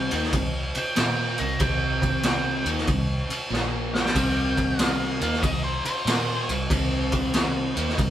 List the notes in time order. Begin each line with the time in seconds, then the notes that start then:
Already playing: C3 G3 C4 G5
0.11 D#2 D#3 A#3 D#4, ride
0.23 snare
0.33 C2 C3 G3, kick, ride
0.75 G5, muted overdriven electric guitar stroke, muted fingered electric bass stroke, ride
0.96 A#2 A#3 F4 A#4, snare, ride
1.38 C2 C3 G3 A#5, ride
1.59 C2 C3 G3 C4 G5, kick, ride
2.02 kick, ride
2.23 G5, snare, ride
2.65 D#2 D#3 A#3 D#4, ride
2.77 snare
2.87 C2 C3 G3, kick, ride
3.30 muted overdriven electric guitar stroke, ride
3.50 A#1 A#2 F3 A#3, snare
3.94 G5, snare
4.06 snare
4.14 C2 C3 G3 C4, kick, ride, splash
4.57 kick, ride
4.79 F5, snare, ride
5.21 D#2 D#3 A#3 D#4 F5, ride
5.33 snare
5.42 C2 C3 G3 D#5, kick, ride
5.64 C5
5.85 C5, muted overdriven electric guitar stroke, ride
6.05 A#2 A#3 F4 A#4, snare, ride
6.48 C2 C3 G3, ride
6.70 C2 C3 G3 C4, kick, ride
7.12 kick, ride
7.34 snare, ride
7.75 D#2 D#3 A#3 D#4, ride
7.89 snare
7.98 C2 C3 G3, kick, ride